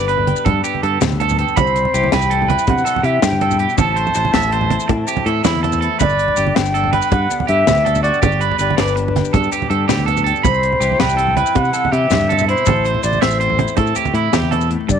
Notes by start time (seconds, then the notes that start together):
Already playing: G1 D3 B3 G4 B4
0.08 G2 D4 B4, closed hi-hat, low conga, maracas
0.17 low conga
0.27 G4, closed hi-hat, high conga
0.36 low conga, maracas
0.45 G2 D4 A4, kick, closed hi-hat, low conga, maracas
0.64 B3 G4, closed hi-hat, low conga, maracas
0.75 high conga
0.83 G2 D3 G4 A4, closed hi-hat
1.01 D2 B3, muted clean electric guitar stroke, snare, closed hi-hat, low conga, maracas
1.11 high conga, low conga, maracas
1.20 G2 A4, closed hi-hat, muted conga
1.29 low conga, maracas
1.39 G4 A4, closed hi-hat, low conga
1.48 low conga, maracas
1.56 C2 C3 C4 C5 B5, kick, closed hi-hat, muted conga, high conga, low conga, maracas
1.67 maracas
1.76 G3, closed hi-hat, maracas
1.85 low conga
1.94 C2 E3 E4 G4, closed hi-hat, maracas
2.03 muted conga, high conga
2.12 C2 G3 B4 G5, snare, closed hi-hat, low conga
2.22 low conga, maracas
2.30 G2 C4 A4, closed hi-hat, low conga
2.42 low conga
2.48 E4 B4, closed hi-hat, muted conga, high conga
2.58 low conga, maracas
2.67 C3 C4 F#5, kick, closed hi-hat, low conga, maracas
2.78 maracas
2.85 G3 A4, closed hi-hat, low conga, maracas
2.96 muted conga, low conga
3.03 C3 E3 E4 G4 E5, closed hi-hat
3.22 G2 D3 G5, snare, closed hi-hat, low conga, maracas
3.32 high conga, low conga, maracas
3.41 C3 A4, closed hi-hat, muted conga
3.51 low conga, maracas
3.59 B2 G4, closed hi-hat, low conga
3.69 low conga, maracas
3.77 A1 A2 C4 A4 A5, kick, closed hi-hat, muted conga, high conga, low conga, maracas
3.88 low conga
3.96 A3 C5, closed hi-hat
4.06 low conga, maracas
4.15 A1 E3 E4 C5, closed hi-hat, low conga, maracas
4.25 muted conga, high conga
4.34 A1 A3 E5, snare, closed hi-hat, low conga, maracas
4.42 maracas
4.52 E2 C4 C5, closed hi-hat
4.61 low conga
4.70 E4, closed hi-hat, muted conga, high conga
4.80 maracas
4.88 A2 C4, muted clean electric guitar stroke, kick, closed hi-hat, low conga, maracas
5.08 A3 G4, closed hi-hat, maracas
5.16 muted conga, high conga, low conga, maracas
5.26 A2 E3 E4 A4, closed hi-hat, low conga, maracas
5.44 E2 A3 E4, snare, closed hi-hat, low conga, maracas
5.55 high conga
5.63 E2 C4 A4, closed hi-hat, muted conga, low conga
5.72 low conga, maracas
5.81 E4 A4, closed hi-hat
6.00 G1 G2 D4 B4 D5, kick, closed hi-hat, muted conga, high conga, low conga, maracas
6.09 maracas
6.19 closed hi-hat, maracas
6.28 low conga
6.36 G1 D3 G4, closed hi-hat, maracas
6.47 muted conga, high conga
6.56 G1 B3 G5, snare, closed hi-hat, low conga
6.65 low conga, maracas
6.74 G2 D4 A4, closed hi-hat, low conga, maracas
6.84 low conga
6.93 G4 B4, closed hi-hat, muted conga, high conga
7.02 low conga, maracas
7.11 G2 D4 F#5, muted clean electric guitar stroke, kick, closed hi-hat, low conga, maracas
7.30 B3, closed hi-hat, low conga, maracas
7.40 muted conga, high conga, low conga
7.47 G2 D3 G4 E5, closed hi-hat
7.67 D2 B3, snare, closed hi-hat, low conga, maracas
7.77 high conga, low conga, maracas
7.85 G2 D4 A4, closed hi-hat, muted conga
7.95 low conga, maracas
8.03 F#4 G4 D5, closed hi-hat, low conga
8.14 low conga, maracas
8.22 G1 G2 B3 G4, kick, closed hi-hat, muted conga, high conga, low conga, maracas
8.32 D4, maracas
8.40 B3 B4, closed hi-hat, maracas
8.51 low conga
8.59 G1 D3 G4 B4 D5, closed hi-hat, maracas
8.70 muted conga, high conga
8.77 G1 B3 B4 D5, snare, closed hi-hat, low conga
8.87 low conga, maracas
8.96 G2 D4, muted clean electric guitar stroke, closed hi-hat, low conga, maracas
9.08 low conga
9.16 G4, snare, closed hi-hat, muted conga, high conga
9.25 low conga, maracas
9.33 G2 D4 A4, kick, closed hi-hat, low conga, maracas
9.43 maracas
9.52 B3 G4, closed hi-hat, low conga, maracas
9.62 muted conga, high conga, low conga
9.69 G2 D3 G4 A4, closed hi-hat
9.88 D2 B3 G4, snare, closed hi-hat, low conga, maracas
9.99 high conga, low conga, maracas
10.06 G2 D4 A4, closed hi-hat, muted conga
10.17 low conga, maracas
10.24 G4 A4, closed hi-hat, low conga
10.35 low conga, maracas
10.43 C2 C3 C4 C5 B5, kick, closed hi-hat, muted conga, high conga, low conga, maracas
10.54 maracas
10.63 G3, closed hi-hat, maracas
10.73 low conga
10.80 C2 E3 E4 G4, closed hi-hat, maracas
10.92 muted conga, high conga
10.99 C2 G3 B4 G5, snare, closed hi-hat, low conga
11.09 maracas
11.17 G2 C4 A4, closed hi-hat, low conga, maracas
11.27 low conga
11.37 E4 B4, closed hi-hat, muted conga, high conga
11.46 low conga, maracas
11.55 C3 C4 F#5, kick, closed hi-hat, low conga, maracas
11.65 maracas
11.73 G3 A4, closed hi-hat, low conga, maracas
11.85 muted conga, high conga, low conga
11.92 C3 E3 E4 G4 E5, closed hi-hat
12.10 G2 D3, snare, closed hi-hat, low conga, maracas
12.21 high conga, low conga, maracas
12.29 C3 A4, closed hi-hat, muted conga
12.38 low conga, maracas
12.48 B2 E4 C5, closed hi-hat, low conga
12.57 low conga, maracas
12.66 A1 A2 E3 A3 C4 E4 A4, kick, closed hi-hat, muted conga, high conga, low conga, maracas
12.77 low conga
12.85 A3 C5, closed hi-hat, maracas
12.94 low conga
13.03 A1 E3 E4 C5 D5, closed hi-hat, maracas
13.13 muted conga, high conga, maracas
13.21 A1 A3 C5 E5, snare, closed hi-hat, low conga, maracas
13.31 maracas
13.40 E2 C4 C5, closed hi-hat
13.50 low conga
13.58 E4, closed hi-hat, muted conga, high conga, low conga, maracas
13.68 maracas
13.77 A2 C4 A4, kick, closed hi-hat, low conga
13.87 maracas
13.96 A3 G4, closed hi-hat, low conga, maracas
14.05 muted conga, high conga, low conga, maracas
14.13 A2 E3 E4, closed hi-hat
14.32 E2 C3 G4, snare, closed hi-hat, low conga, maracas
14.43 high conga, low conga
14.50 B2 A4, closed hi-hat, muted conga
14.61 maracas
14.69 A2, closed hi-hat
14.81 low conga
14.87 G2 D5, muted clean electric guitar stroke, kick, closed hi-hat, muted conga, high conga, low conga, maracas